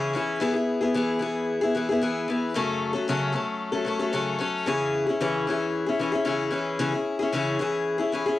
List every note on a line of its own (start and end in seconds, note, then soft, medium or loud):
0.00 0.15 C#3 medium
0.00 0.12 E3 medium
0.00 0.14 C#4 medium
0.00 0.15 E4 medium
0.00 0.16 G#4 medium
0.14 0.39 E3 medium
0.14 0.41 C#4 medium
0.14 0.40 E4 medium
0.14 0.41 G#4 medium
0.40 0.54 E3 medium
0.40 0.55 B3 medium
0.40 0.54 E4 medium
0.40 0.52 G#4 medium
0.54 0.81 B3 soft
0.54 0.81 E4 soft
0.54 0.80 G#4 soft
0.81 0.94 B3 soft
0.81 0.95 E4 soft
0.81 0.95 G#4 medium
0.94 1.18 E3 medium
0.94 1.20 B3 medium
0.94 1.21 E4 medium
0.94 1.21 G#4 medium
1.19 1.60 E3 medium
1.19 1.61 B3 medium
1.19 1.62 E4 medium
1.19 1.60 G#4 medium
1.61 1.74 B3 soft
1.61 1.76 E4 soft
1.61 1.75 G#4 medium
1.75 1.88 E3 medium
1.75 1.88 B3 medium
1.75 1.89 E4 medium
1.75 1.88 G#4 medium
1.89 2.01 B3 soft
1.89 2.01 E4 soft
1.89 2.02 G#4 medium
2.02 2.27 E3 medium
2.02 2.28 B3 medium
2.02 2.28 E4 medium
2.02 2.29 G#4 medium
2.28 2.54 E3 medium
2.28 2.55 B3 medium
2.28 2.55 E4 medium
2.28 2.56 G#4 medium
2.54 2.94 F#2 medium
2.54 2.95 C#3 medium
2.54 2.95 F#3 medium
2.54 2.94 A3 medium
2.54 2.93 C#4 medium
2.54 2.92 A4 medium
2.93 3.08 F#3 soft
2.93 3.08 A3 medium
2.93 3.07 C#4 soft
2.93 3.07 A4 medium
3.08 3.34 F#2 medium
3.08 3.34 C#3 medium
3.08 3.31 F#3 medium
3.08 3.32 A3 medium
3.08 3.34 C#4 medium
3.08 3.34 A4 medium
3.33 3.73 F#3 medium
3.33 3.72 A3 medium
3.33 3.71 C#4 medium
3.33 3.71 A4 medium
3.72 3.84 F#3 soft
3.72 3.85 A3 medium
3.72 3.86 C#4 medium
3.72 3.86 A4 medium
3.85 3.99 F#3 medium
3.85 3.99 A3 medium
3.85 3.98 C#4 medium
3.85 3.98 A4 medium
3.99 4.12 F#3 soft
3.99 4.12 A3 soft
3.99 4.13 C#4 medium
3.99 4.13 A4 soft
4.13 4.40 F#2 medium
4.13 4.40 C#3 medium
4.13 4.37 F#3 medium
4.13 4.39 A3 medium
4.13 4.40 C#4 medium
4.13 4.41 A4 medium
4.39 4.66 F#3 medium
4.39 4.66 A3 medium
4.39 4.66 C#4 medium
4.39 4.68 A4 medium
4.66 5.06 C#3 medium
4.66 5.06 E3 medium
4.66 5.07 C#4 medium
4.66 5.07 E4 medium
4.66 5.05 G#4 medium
5.07 5.20 C#4 soft
5.07 5.21 E4 soft
5.07 5.20 G#4 medium
5.20 5.47 C#3 medium
5.20 5.46 E3 medium
5.20 5.47 C#4 medium
5.20 5.47 E4 medium
5.20 5.47 G#4 medium
5.47 5.86 E3 medium
5.47 5.87 C#4 medium
5.47 5.87 E4 medium
5.47 5.85 G#4 medium
5.86 6.00 C#4 soft
5.86 6.00 E4 soft
5.86 5.99 G#4 medium
5.99 6.13 E3 medium
5.99 6.13 C#4 medium
5.99 6.12 E4 medium
5.99 6.10 G#4 medium
6.12 6.24 C#4 soft
6.12 6.25 E4 medium
6.12 6.25 G#4 medium
6.25 6.52 C#3 medium
6.25 6.49 E3 medium
6.25 6.50 C#4 medium
6.25 6.51 E4 medium
6.25 6.52 G#4 medium
6.51 6.78 E3 medium
6.51 6.79 C#4 medium
6.51 6.79 E4 medium
6.51 6.79 G#4 medium
6.79 6.92 C#3 medium
6.79 6.92 E3 medium
6.79 6.93 C#4 medium
6.79 6.92 E4 medium
6.79 6.91 G#4 medium
6.92 7.20 C#4 soft
6.92 7.19 E4 soft
6.92 7.18 G#4 soft
7.19 7.32 C#4 soft
7.19 7.33 E4 soft
7.19 7.32 G#4 medium
7.32 7.59 C#3 medium
7.32 7.58 E3 medium
7.32 7.58 C#4 medium
7.32 7.60 E4 medium
7.32 7.60 G#4 medium
7.59 7.99 E3 medium
7.59 7.99 C#4 medium
7.59 7.98 E4 medium
7.59 7.97 G#4 medium
7.98 8.12 C#4 soft
7.98 8.12 E4 medium
7.98 8.12 G#4 medium
8.12 8.25 E3 medium
8.12 8.26 C#4 medium
8.12 8.26 E4 medium
8.12 8.25 G#4 medium
8.26 8.39 C#4 soft
8.26 8.39 E4 soft
8.26 8.39 G#4 medium